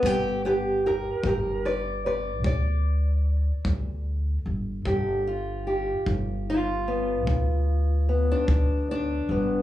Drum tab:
BD |o--o--o--o--|o--o--o--o--|